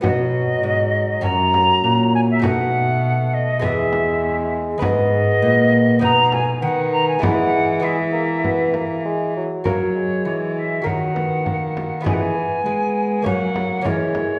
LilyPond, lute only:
<<
  \new Staff \with { instrumentName = "Lute" } { \time 4/4 \key fis \mixolydian \tempo 4 = 100 <b fis'>2 <cis' fis'>2 | <a dis' fis'>2 <gis b gis'>2 | <gis gis' b'>2 <b dis'>2 | <gis b e'>4 <gis b e'>2. |
<fis' ais'>2 <fis' ais'>2 | <b e' gis'>2 <ais cis' cis''>4 <ais cis' cis''>4 | }
  \new Staff \with { instrumentName = "Lute" } { \clef bass \time 4/4 \key fis \mixolydian b,4 gis,4 fis,4 ais,4 | b,2 e,2 | gis,4 ais,4 b,4 dis4 | e2.~ e8 r8 |
fis4 e4 dis2 | e4 gis4 fis4 e4 | }
>>